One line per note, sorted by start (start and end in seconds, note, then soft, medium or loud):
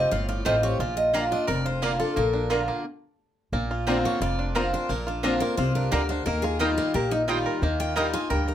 0.00 0.10 G3 medium
0.00 0.11 C4 medium
0.00 0.42 C4 medium
0.00 0.12 F4 medium
0.00 0.11 G4 medium
0.00 0.11 D#5 loud
0.11 0.41 G1 medium
0.11 0.77 A2 medium
0.11 0.29 F4 medium
0.11 0.28 F5 medium
0.29 0.46 F4 medium
0.29 0.45 D5 medium
0.45 0.75 A1 medium
0.45 0.62 F3 medium
0.45 0.63 G3 medium
0.45 0.55 A3 medium
0.45 0.63 C4 medium
0.45 0.55 F4 medium
0.45 0.80 F4 medium
0.45 0.62 G4 medium
0.45 0.55 C5 medium
0.45 0.63 D#5 loud
0.45 0.55 G5 loud
0.63 0.80 C4 medium
0.63 0.80 C4 soft
0.63 0.79 G4 medium
0.63 0.79 C#5 loud
0.79 1.31 A#1 medium
0.79 1.45 A#2 medium
0.79 1.14 F4 medium
0.79 0.96 D5 medium
0.97 1.13 D#5 loud
1.13 1.30 D3 medium
1.13 1.23 A#3 medium
1.13 1.31 A#3 medium
1.13 1.31 D4 medium
1.13 1.23 F4 medium
1.13 1.62 F4 medium
1.13 1.30 F4 medium
1.13 1.24 D5 loud
1.13 1.31 G5 medium
1.13 1.24 A#5 loud
1.31 1.79 D4 medium
1.31 1.48 D4 soft
1.31 1.47 F4 medium
1.31 1.48 D#5 medium
1.47 2.00 F1 medium
1.47 2.13 F2 medium
1.47 1.96 A#4 medium
1.47 1.65 D5 loud
1.65 1.98 F4 medium
1.65 1.82 C5 medium
1.82 1.99 D3 medium
1.82 1.91 A#3 medium
1.82 2.15 A#3 medium
1.82 1.99 A#3 medium
1.82 2.00 D4 medium
1.82 1.92 F4 medium
1.82 1.99 F4 medium
1.82 1.99 A#4 medium
1.82 1.92 D5 loud
1.82 1.92 A#5 loud
2.00 2.17 D4 soft
2.00 2.47 F4 medium
2.00 2.16 F4 medium
2.00 2.16 A4 medium
2.16 2.68 A#1 medium
2.16 2.82 A#2 medium
2.16 2.65 A#3 medium
2.16 2.48 A#4 medium
2.33 2.81 D4 medium
2.50 2.83 D3 medium
2.50 2.60 A#3 loud
2.50 2.84 A#3 medium
2.50 2.84 D4 medium
2.50 2.84 F4 medium
2.50 2.60 F4 medium
2.50 2.84 F4 medium
2.50 2.60 D5 medium
2.50 2.60 A#5 loud
2.68 2.85 A#3 medium
3.52 4.04 A#1 medium
3.52 4.18 A#2 medium
3.52 4.05 A#3 medium
3.71 4.21 F4 medium
3.87 4.20 D3 medium
3.87 4.20 A#3 medium
3.87 3.96 C4 medium
3.87 4.20 C4 medium
3.87 4.36 D4 medium
3.87 3.96 F4 loud
3.87 4.21 F4 medium
3.87 3.97 D5 loud
3.87 3.97 A#5 loud
4.05 4.89 A#3 medium
4.05 4.21 C#5 medium
4.20 4.72 F1 medium
4.20 4.86 F2 medium
4.20 5.06 F4 medium
4.20 4.69 D5 medium
4.39 4.72 D4 medium
4.55 4.72 D3 medium
4.55 4.72 A#3 medium
4.55 4.64 C4 medium
4.55 4.73 C4 loud
4.55 4.65 F4 loud
4.55 4.72 F4 medium
4.55 5.93 A#4 medium
4.55 4.65 D5 medium
4.55 4.65 A#5 loud
4.73 4.90 C4 medium
4.73 5.21 D4 medium
4.73 4.89 F4 medium
4.73 4.90 C5 medium
4.89 5.41 A#1 medium
4.89 5.55 A#2 medium
4.89 5.41 A#3 medium
4.89 5.07 A#4 medium
5.07 5.24 D4 medium
5.07 5.58 F4 medium
5.23 5.40 D3 medium
5.23 5.41 A#3 medium
5.23 5.33 C4 loud
5.23 5.41 C4 loud
5.23 5.72 D4 medium
5.23 5.33 F4 medium
5.23 5.41 F4 medium
5.23 5.40 F4 medium
5.23 5.33 D5 medium
5.23 5.33 A#5 medium
5.40 6.27 A#3 medium
5.40 5.58 C4 soft
5.40 5.57 F4 medium
5.40 5.57 A#4 loud
5.57 5.87 C2 medium
5.57 5.91 C3 medium
5.57 6.44 F4 medium
5.57 5.75 C5 medium
5.75 6.09 D4 medium
5.75 5.91 A#4 medium
5.91 6.21 D2 medium
5.91 6.24 D3 medium
5.91 6.01 C4 medium
5.91 6.01 F4 medium
5.91 6.60 A#4 medium
5.91 6.09 D5 medium
5.91 6.01 D5 loud
5.91 6.02 A#5 loud
6.09 6.27 D4 medium
6.09 6.25 C5 medium
6.26 6.78 D#2 medium
6.26 6.58 D#3 medium
6.26 6.78 A#3 medium
6.26 6.43 A#4 medium
6.42 7.15 F4 medium
6.42 6.59 G#4 medium
6.59 6.92 D#3 medium
6.59 6.93 G3 medium
6.59 6.69 A#3 loud
6.59 6.93 D#4 medium
6.59 6.69 F4 loud
6.59 6.93 F4 loud
6.59 6.77 G4 medium
6.59 6.95 A#4 medium
6.59 6.69 D#5 loud
6.59 6.70 G5 loud
6.78 7.62 A#3 medium
6.78 6.94 F4 medium
6.94 7.46 A#1 medium
6.94 7.59 A#2 medium
6.94 7.11 G4 medium
6.94 7.45 A#4 medium
7.11 7.21 D#4 medium
7.11 7.59 D#4 medium
7.28 7.60 D#3 medium
7.28 7.61 G3 medium
7.28 7.37 A#3 medium
7.28 7.61 D#4 medium
7.28 7.37 F4 medium
7.28 7.80 F4 medium
7.28 7.61 F4 medium
7.28 7.38 D#5 loud
7.28 7.38 G5 loud
7.46 7.96 A#4 medium
7.62 8.13 D#2 medium
7.62 7.95 D#3 medium
7.62 8.13 A#3 medium
7.80 8.51 F4 medium
7.80 7.96 G5 loud
7.96 8.13 D#3 medium
7.96 8.13 G3 medium
7.96 8.05 A#3 medium
7.96 8.13 D#4 medium
7.96 8.06 F4 medium
7.96 8.12 F4 loud
7.96 8.30 A#4 medium
7.96 8.06 D#5 loud
7.96 8.13 F#5 medium
7.96 8.06 G5 loud
8.13 8.54 A#3 medium
8.13 8.30 D#4 soft
8.13 8.29 F4 medium
8.13 8.30 G#5 loud
8.30 8.54 D2 medium
8.30 8.54 G2 medium
8.30 8.54 A#4 medium
8.30 8.47 G5 medium
8.48 8.54 D#4 medium
8.48 8.54 A#4 soft